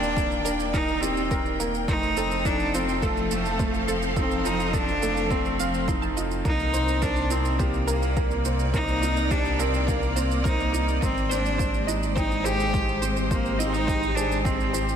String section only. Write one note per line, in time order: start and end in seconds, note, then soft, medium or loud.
0.00 1.88 D#3 medium
0.00 1.88 A#3 medium
0.00 1.88 D5 medium
0.00 3.71 G5 medium
1.88 6.45 F3 medium
1.95 7.87 C4 medium
2.51 6.45 A4 medium
2.51 6.45 F5 medium
6.46 11.02 C3 medium
6.68 12.69 A#3 medium
7.54 12.85 D5 medium
11.03 14.96 G#3 medium
11.42 14.96 G4 medium
11.52 14.96 C5 medium